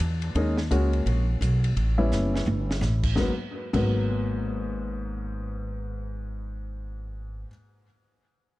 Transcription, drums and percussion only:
0.00 kick, hi-hat pedal, ride
0.22 ride
0.35 kick, ride
0.57 snare
0.71 kick, hi-hat pedal, ride
0.93 ride
1.06 kick, ride
1.41 kick, hi-hat pedal, ride
1.64 ride
1.77 kick, ride
2.12 snare, hi-hat pedal
2.36 snare
2.47 high tom
2.71 snare
2.82 snare, hi-hat pedal
3.03 kick, crash
3.16 kick, snare
3.74 kick, crash

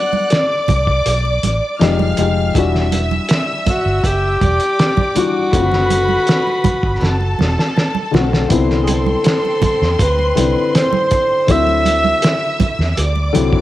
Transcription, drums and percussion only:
0.13 high conga
0.30 snare, closed hi-hat
0.68 kick, closed hi-hat, high conga, low conga
0.87 kick
1.06 closed hi-hat, muted conga
1.25 muted conga
1.43 closed hi-hat, high conga
1.81 snare, closed hi-hat
1.99 muted conga, high conga
2.17 closed hi-hat, low conga
2.55 kick, closed hi-hat
2.75 snare
2.92 closed hi-hat, high conga
3.11 high conga
3.29 snare, closed hi-hat
3.66 kick, closed hi-hat, high conga, low conga
4.04 kick, closed hi-hat
4.41 kick, closed hi-hat, high conga
4.60 closed hi-hat
4.79 snare, closed hi-hat
4.97 kick, muted conga, high conga
5.16 closed hi-hat, low conga
5.53 kick, closed hi-hat
5.72 snare, muted conga
5.90 closed hi-hat, high conga
6.08 high conga
6.27 snare, closed hi-hat
6.47 muted conga
6.64 kick, closed hi-hat, high conga, low conga
6.83 kick
7.01 snare, muted conga
7.21 muted conga
7.39 snare, high conga
7.59 snare
7.77 snare, muted conga
7.95 high conga
8.14 snare, low conga
8.33 snare
8.50 kick, closed hi-hat
8.70 snare
8.87 closed hi-hat, high conga
9.06 high conga
9.24 snare, closed hi-hat, muted conga
9.45 muted conga
9.62 kick, closed hi-hat, high conga, low conga
9.83 snare
9.99 kick, closed hi-hat
10.19 muted conga
10.37 closed hi-hat, high conga
10.75 snare, closed hi-hat
10.93 muted conga, high conga
11.11 kick, closed hi-hat, low conga
11.48 kick, closed hi-hat, muted conga
11.67 muted conga
11.86 closed hi-hat, high conga
12.04 high conga
12.22 snare, closed hi-hat
12.60 kick, closed hi-hat, high conga, low conga
12.80 snare
12.97 closed hi-hat, muted conga
13.16 muted conga
13.34 closed hi-hat, high conga
13.53 kick

